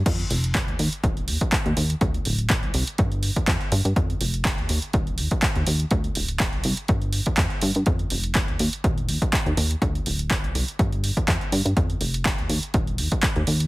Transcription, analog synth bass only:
X:1
M:4/4
L:1/16
Q:"Swing 16ths" 1/4=123
K:Fmix
V:1 name="Analog synth bass" clef=bass
F,, z F,,,3 E,, E,, z E,,,2 E,, z2 E,, E,, z | D,, z D,,,3 C,, C,, z G,,3 F,, F,, z G,, G,, | F,, z F,,,3 E,, E,, z E,,,2 E,, z2 E,, E,, z | D,, z D,,,3 C,, C,, z G,,3 F,, F,, z G,, G,, |
F,, z F,,,3 E,, E,, z E,,,2 E,, z2 E,, E,, z | D,, z D,,,3 C,, C,, z G,,3 F,, F,, z G,, G,, | F,, z F,,,3 E,, E,, z E,,,2 E,, z2 E,, E,, z |]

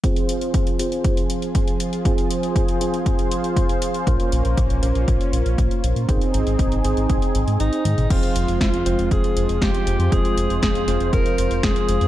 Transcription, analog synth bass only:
X:1
M:4/4
L:1/16
Q:1/4=119
K:Fm
V:1 name="Analog synth bass" clef=bass
z16 | z16 | B,,, z B,,, B,,, B,,, B,,, B,,, B,,, B,,, z B,,, B,,, B,,, z B,,, B,, | A,,, z A,,, A,,, A,,, A,,, A,,, A,,, A,,, z A,,, A,, A,,, z A,, A,,, |
F,,, z F,,, F,,, F,,, F,,, F,,, F,,, F,,, z F,,, F,,, F,,, z F,,, F,, | F,,, z F,,, F,,, F,,, F,,, F,,, F,,, F,,, z F,,, F,,, F,,, z F,,, F,, |]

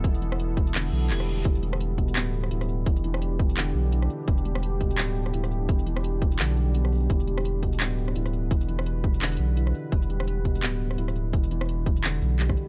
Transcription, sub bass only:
X:1
M:4/4
L:1/8
Q:"Swing 16ths" 1/4=170
K:Em
V:1 name="Sub bass" clef=bass
E,,,4 E,,, B,,, E,,,2 | E,,,4 D,,,2 D,,,2 | E,,,4 E,,, B,,,2 z | E,,,4 D,,,2 D,,,2 |
E,,,4 B,,,4 | E,,,4 D,,,2 D,,,2 | E,,,4 E,,, B,,,2 z | E,,,4 D,,,2 D,,,2 |
E,,,4 E,,, B,,,2 z |]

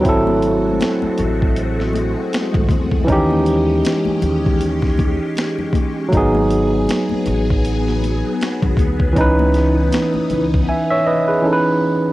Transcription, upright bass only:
X:1
M:4/4
L:1/16
Q:"Swing 16ths" 1/4=79
K:G#phr
V:1 name="Upright bass" clef=bass
G,,,4 z2 A,,,4- A,,, z2 G,,, E,,2 | D,,4 z2 D,,4- D,, z4 z | G,,,4 z2 A,,,4- A,,, z2 G,,, =D,,2 | C,,4 z2 C,,2 z8 |]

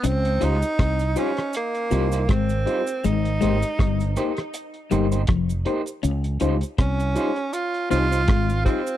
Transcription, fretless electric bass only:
X:1
M:4/4
L:1/16
Q:"Swing 16ths" 1/4=80
K:Dblyd
V:1 name="Fretless electric bass" clef=bass
D,,2 D,, z C,,2 z4 C,,2 A,,,2 z2 | A,,,2 A,,, z G,,,2 z4 G,,,2 F,,,2 z2 | D,,2 D,, z C,,2 z4 C,,2 A,,,2 z2 |]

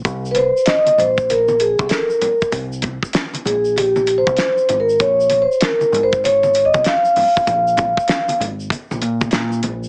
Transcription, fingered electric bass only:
X:1
M:4/4
L:1/16
Q:"Swing 16ths" 1/4=97
K:Ab
V:1 name="Fingered electric bass" clef=bass
C,,3 z3 B,,,4- B,,, C,, z4 | C,,3 z3 B,,,4- B,,, C,, z2 A,,,2 | B,,,3 z3 A,,,4- A,,, C,, z4 | B,,,3 z3 A,,,2 z B,,, B,,2 B,,2 B,,,2 |]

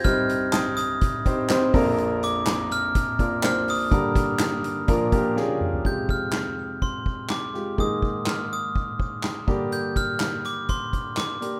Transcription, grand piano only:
X:1
M:4/4
L:1/8
Q:1/4=124
K:Fdor
V:1 name="Grand piano"
[CEGc]3 z2 [CEGc] [CEGc] [B,DFB]- | [B,DFB]2 z3 [B,DFB] [B,DFc]2 | [B,DGB]3 z [B,DFB] [B,DFG] [B,_D=DFA]2 | [A,FG]3 z4 [A,FG] |
[B,EA]3 z4 [B,DG]- | [B,DG]2 z4 z [B,DG] |]
V:2 name="Grand piano" clef=bass
[C,,G,,]6- [C,,G,,] [B,,,F,,]- | [B,,,F,,]6- [B,,,F,,] z | [G,,D,]4 [B,,F,]4 | [F,,C,]8 |
[A,,E,]6- [A,,E,] [G,,D,]- | [G,,D,]6- [G,,D,] z |]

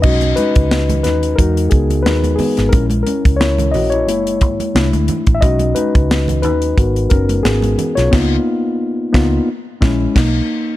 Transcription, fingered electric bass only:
X:1
M:4/4
L:1/16
Q:"Swing 16ths" 1/4=89
K:B
V:1 name="Fingered electric bass" clef=bass
B,,,2 z C,,3 D,,2 E,,2 C,,2 D,,2 z G,,, | A,,,2 z C,,3 A,,,2 F,,,2 G,,, z =C,, =D,, z =A,,, | B,,,2 z C,,3 D,,2 G,,,2 F,,,2 G,,,2 z B,,, | C,,2 z4 C,,2 z2 A,,,2 B,,,2 z2 |]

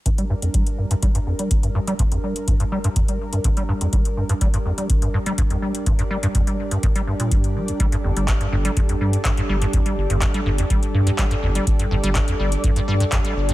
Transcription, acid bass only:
X:1
M:4/4
L:1/16
Q:1/4=124
K:C
V:1 name="Acid bass" clef=bass
G,, G, G,, F,, G, z G,, G,, G, G,, F,, G, z G,, G,, G, | G,, F,, G, z G,, G,, G, G,, F,, G, z G,, G,, G, G,, F,, | G, z G,, G,, G, G,, F,, G, z G,, G,, G, G,, F,, G, z | G,, G,, G, G,, F,, G, z G,, G,, G, G,, _B,, G,,2 G, G,,, |
G, G,, F,, G, z G,, G,, G, G,, F,, G, z G,, G,, G, G,, | F,, G, z G,, G,, G, G,, F,, G, z G,, G,, G, G,, F,, G, | z G,, G,, G, G,, F,, G, z G,, G,, G, G,, F,, G, z G,, |]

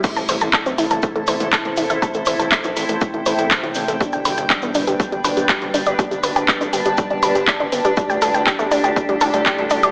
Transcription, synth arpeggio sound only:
X:1
M:4/4
L:1/16
Q:1/4=121
K:Am
V:1 name="Synth arpeggio sound"
A, a c a A C E A A, A, c A, A A, E e | A A, c A e E A A, A, E c A e E C A, | G, g B g G B, D G G, G, B G, G G, D d | G G, B G d D G G, G, D B G d D B, G, |
G, g A g G A, D G G, G, A G, G G, D d |]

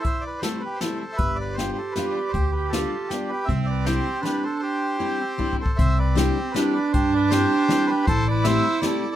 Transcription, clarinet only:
X:1
M:3/4
L:1/8
Q:"Swing" 1/4=157
K:C
V:1 name="Clarinet"
E4 z2 | G6- | G6 | C4 D2- |
D2 E C2 z | C4 D2- | D6 | E6 |]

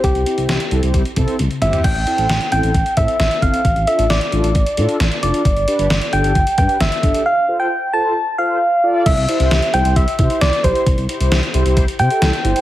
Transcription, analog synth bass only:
X:1
M:4/4
L:1/16
Q:1/4=133
K:C
V:1 name="Analog synth bass" clef=bass
C,, C,, z C,, C,, z C,, C,, C,, z C, z C,, z G,,, z | A,,, A,,, z A,,, A,,, z A,,, A,,, A,,, z A,, z A,,, z G,,, z | A,,, A,,, z A,,, A,,, z A,,, A,,, A,,, z A,, z A,,, z F,,, z | G,,, G,,, z G,,, G,,, z G,,, G,,, G,,, z G,, z G,,, z G,,, z |
z16 | C,, C,, z C,, C,, z C,, C,, C,, z C, z C,, z B,,, z | C,, C,, z C,, C,, z C,, C,, C,, z C, z C,, z G,,, z |]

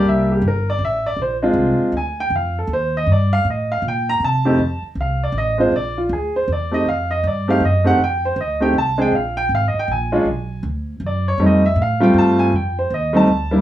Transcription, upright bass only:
X:1
M:3/4
L:1/8
Q:"Swing" 1/4=159
K:Fmix
V:1 name="Upright bass" clef=bass
C,,2 G,,,2 A,,,2 | B,,,2 C,, z D,,2 | F,,2 E,,2 G,,2 | A,,2 B,,2 C,2 |
F,, z C,,2 A,,,2 | B,,,2 D,,2 =E,,2 | F,,2 G,,2 _G,,2 | F,,2 D,,2 C,,2 |
B,,,2 _A,,, z B,,,2 | =B,,,2 D,,2 ^F,,2 | F,,2 A,,2 G,,2 | F,,2 E,,2 D,,2 |]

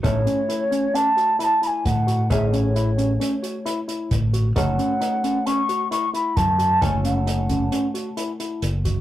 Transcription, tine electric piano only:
X:1
M:5/4
L:1/8
Q:1/4=133
K:Alyd
V:1 name="Tine electric piano"
D C E C C F E E2 F | D C E C C F E E2 F | D C D C C F E E2 F | D C D C C F E E2 F |]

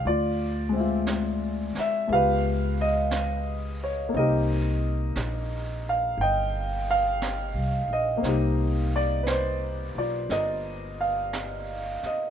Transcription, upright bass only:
X:1
M:4/4
L:1/8
Q:"Swing" 1/4=59
K:Cm
V:1 name="Upright bass" clef=bass
D,,3 z _D,,4 | C,,2 B,,,2 G,,,2- (3G,,, C,, B,,, | C,,3 =B,,, G,,,3 z |]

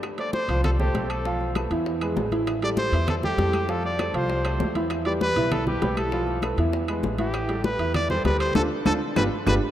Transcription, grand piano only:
X:1
M:4/4
L:1/8
Q:1/4=197
K:Flyd
V:1 name="Grand piano"
z [A,Ac]2 [F,Ff]2 [A,Ac] [A,Ac]2 | [F,Ff]2 [A,AB] [E,Ee]2 [^G,^GB]2 [E,Ee]- | [E,Ee] [G,GA]2 [E,Ee]2 [G,GA] [G,GA]2 | [F,Ff]2 [A,Ac] [F,Ff]2 [A,Ac]2 [E,Ee]- |
[E,Ee] [G,GB]2 [E,Ee]2 [G,GB] [G,GB]2 | [F,Ff]2 [A,AB] [E,Ee]2 [^G,^GB]2 [E,Ee]- | [E,Ee] [G,GA]2 [E,Ee]2 [G,GA] [G,GA]2 | [DFA] z [DFA] z [DFG] z [DFG] z |]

